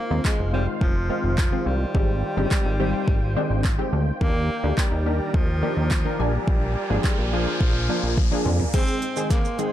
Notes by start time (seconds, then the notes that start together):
Already playing: D#3 A#3 F4 C5 F5
0.11 D#2 D#3 G#3 C4 F4
0.25 G#3, kick, clap
0.39 F1
0.53 D#3 G3 G#3 C4 F4
0.81 F1 F3, kick
1.09 D#3 G#3 C4 F4
1.24 F1
1.38 F3, kick, clap
1.52 D#3 G#3 C4 F4
1.66 C2 G3
1.94 G#1 D#3 G#3 C4 G4, kick
2.37 G1 D#3 G#3 C4 G4
2.51 kick, clap
2.65 G#1
2.80 D#3 G3 C4 G4
3.08 G#1, kick
3.36 D#3 G#3 C4 D4
3.50 G#1
3.64 kick, clap
3.78 D#3 G#3 C4 G4
3.93 D2
4.21 D#2 D#3 A#3 D4 G4 A#4 D5, kick, riser
4.63 D2 D#3 A#3 D4 G4
4.78 G3, kick, clap
4.92 D#2
5.06 D#3 A#3 D4 G4
5.34 D#2 F3, kick
5.62 D#3 A#3 D4 G4
5.77 D#2
5.91 kick, clap
6.05 D#3 A#3 D4 A#4
6.19 A#1 F3 G3 A#3 D4 F4 G#5
6.48 A#1, kick
6.90 G#1 F3 A#3 D4 G#4
7.04 kick, clap
7.18 A#1
7.33 F3 A#3 D4 G#4
7.61 A#1, kick
7.89 F3 A#3 D4 F4
8.03 A#1
8.17 kick, high tom
8.32 F3 A#3 D4 G#4
8.45 F2, mid tom
8.60 floor tom
8.74 G#2 D#3 G#3 C4 G#4 C5, kick, snare, closed hi-hat, crash, shaker
8.88 shaker
9.02 closed hi-hat, shaker
9.16 D#3 G#3 C4 G#4, shaker
9.30 A#3, kick, snare, closed hi-hat, shaker
9.45 shaker
9.59 D#3 G#3 C4 G#4, closed hi-hat, shaker